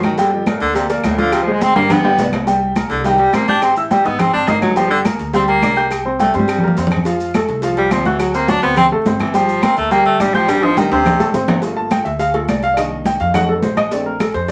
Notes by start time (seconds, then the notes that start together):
Already playing: G1 F#3 F#4 A#4
0.03 D#3, cowbell, high conga, low agogo, claves, maracas
0.18 D3 G3 G4 G5, cowbell, high conga, low agogo, maracas
0.32 F2, high conga
0.46 A2 A#3 A#4 D5, cowbell, high conga, low timbale, low agogo, claves, maracas
0.60 D2 D3, cowbell, high conga, maracas
0.75 C3 A#3 A#4 D5, cowbell, high conga, low agogo, maracas
0.89 F2 A#3 A#4 D5, cowbell, high conga, low agogo, maracas
1.04 D2 A2, cowbell, high conga, low timbale, low agogo, claves, maracas
1.18 D3 F3 F4 F5, cowbell, high conga, maracas
1.32 C3, cowbell, high conga, low agogo, claves, maracas
1.43 F3
1.47 G#3 G#4 C5, high conga
1.52 G#3
1.61 C4, cowbell, high conga, low timbale, low agogo, maracas
1.75 G1 G3 A#3 G4 G5, cowbell, high timbale, maracas
1.90 B3, cowbell, high conga, low conga, high timbale, low agogo, claves, maracas
2.04 G3 G4 G5, high conga, low timbale
2.18 C2 B3 B4 D5, cowbell, high conga, low timbale, low agogo, maracas
2.33 cowbell, high conga, low timbale, low agogo, claves, maracas
2.47 G3 G4 G5, cowbell, low agogo, maracas
2.62 high conga
2.76 A#3 A#4 A#5, cowbell, high conga, low timbale, low agogo, claves, maracas
2.90 C2 D3, cowbell, high conga, maracas
3.04 D#3 G3 G4 G5, cowbell, high conga, low agogo, maracas
3.18 G3, cowbell, high conga, low agogo
3.33 A1 A#3 C4 C5 C6, cowbell, high conga, low timbale, low agogo, claves, maracas
3.48 D4 G4 G5 G6, cowbell, high conga, maracas
3.62 C4, cowbell, high conga, low agogo, claves, maracas
3.76 E3 E4 E5 E6, high conga, maracas
3.91 G3 G4 G5, cowbell, high conga, low timbale, low agogo, maracas
4.05 G#1 B3 D#4 D#5 D#6, cowbell, maracas
4.19 C4, cowbell, high conga, low conga, low agogo, claves, maracas
4.33 G#1 C4 D4 C5 C6, high conga
4.48 G1 A#3 D#4 D#5 D#6, cowbell, high conga, low timbale, low agogo, maracas
4.62 F#3, cowbell, high conga, low agogo, claves, maracas
4.76 F3 G3 G4 G5, cowbell, high conga, low agogo, maracas
4.91 D3, high conga
5.05 A#3 A#4 A#5, cowbell, high conga, low timbale, low agogo, claves, maracas
5.19 D2, cowbell, high conga, maracas
5.33 G3 C4 G4 G5, cowbell, low agogo, maracas
5.48 A#3, cowbell, high conga, low agogo
5.62 C2 D4 D5 D6, cowbell, high conga, low timbale, low agogo, claves, maracas
5.76 G4 G5 G6, cowbell, maracas
5.91 cowbell, high conga, low agogo, claves, maracas
6.05 C4 C5 C6, high conga
6.19 G3 A3 G4 G5, cowbell, high conga, low timbale, low agogo, maracas
6.34 G2 G3 C4 C5 C6, cowbell, maracas
6.39 high conga
6.48 cowbell, low agogo, claves, maracas
6.58 low conga
6.63 G2 A#3 A#4 A#5
6.68 low conga
6.77 F2 C4 C5 C6, cowbell, low timbale, low agogo, maracas
6.87 cowbell, low conga
6.92 low agogo, claves, maracas
6.96 low conga
7.05 F3 F4 F5, cowbell, high conga, low agogo, maracas
7.20 high conga, maracas
7.34 A3 A4 A5, cowbell, high conga, low timbale, low agogo, claves, maracas
7.48 C2, cowbell, high conga, maracas
7.62 F3 F4 F5, cowbell, high conga, low agogo, maracas
7.77 G3, cowbell, high conga, low agogo
7.91 D2 F3 C4 C5 C6, cowbell, high conga, low timbale, low agogo, claves, maracas
8.05 E3 F#4 F#5 F#6, cowbell, high conga, maracas
8.20 F#3, cowbell, high conga, low agogo, claves, maracas
8.34 A#3 C4 C5 C6, high conga, maracas
8.48 F#3 D4 F#4 F#5, cowbell, high conga, low timbale, low agogo, maracas
8.62 D2 B3 C4 C5 C6, cowbell, maracas
8.76 C4, cowbell, high conga, low conga, low agogo, claves, maracas
8.91 A1 A3 A4 A5, high conga
9.06 G1 C4 C5 C6, cowbell, high conga, low timbale, low agogo, maracas
9.20 E3, cowbell, high conga, low agogo, claves, maracas
9.34 F3 G3 G4 G5, cowbell, high conga, low agogo, maracas
9.49 high conga, maracas
9.63 A#3 C4 A#4 A#5, cowbell, high conga, low timbale, low agogo, claves, maracas
9.77 D2 A3, cowbell, high conga, maracas
9.91 G3 A#3 G4 G5, cowbell, high conga, low agogo, maracas
10.06 A3, cowbell, high conga, low agogo
10.20 A1 G3 D4 D5 D6, cowbell, high conga, low timbale, low agogo, claves, maracas
10.34 F3 G4 G5 G6, cowbell, high conga, maracas
10.48 G3, cowbell, high conga, high timbale, low agogo, claves, maracas
10.63 F3 D#4 D#5 D#6, high conga, high timbale
10.77 D#3 G3 G4 G5, cowbell, high conga, high timbale, low agogo, maracas
10.91 D2 C3 C4 C5 C6, cowbell, high timbale, maracas
11.05 cowbell, high conga, low conga, low timbale, low agogo, claves, maracas
11.20 A1 A3 A4 A5, high bongo, high conga, low timbale, maracas
11.34 G1 C4 C5 C6, cowbell, high bongo, high conga, low agogo, maracas
11.48 cowbell, low bongo, low conga, low timbale, low agogo, claves, maracas
11.62 A3 A#3 F4, cowbell, high conga, low agogo, maracas
11.77 A5, high conga
11.91 G5, cowbell, high conga, low timbale, low agogo, claves, maracas
12.05 D2 E5, cowbell, high conga, maracas
12.19 F5, cowbell, high conga, low agogo, maracas
12.34 A3 A#3 F4 A4, cowbell, high conga, low agogo
12.48 C2 D5, cowbell, high conga, low timbale, low agogo, claves, maracas
12.63 F5, cowbell, maracas
12.74 D#3 D5, cowbell, high conga, low agogo, claves, maracas
12.78 A#3 D4 D#5
12.92 high conga
13.05 G5, cowbell, high conga, low timbale, low agogo, maracas
13.20 F2 F5, cowbell, maracas
13.34 F#3 A3 D#4 F#5, cowbell, high conga, low conga, low agogo, claves, maracas
13.49 A4
13.59 A#1 B4, cowbell, high conga, low timbale, low agogo
13.63 C5, maracas
13.77 D#5, cowbell, high conga, low agogo, claves, maracas
13.91 A3 C4 D4 D5, cowbell, high conga, low agogo, maracas
14.06 A#4, high conga
14.20 A4, cowbell, high conga, low timbale, low agogo, claves, maracas
14.34 F2 C5, cowbell, high conga, maracas
14.48 cowbell, low agogo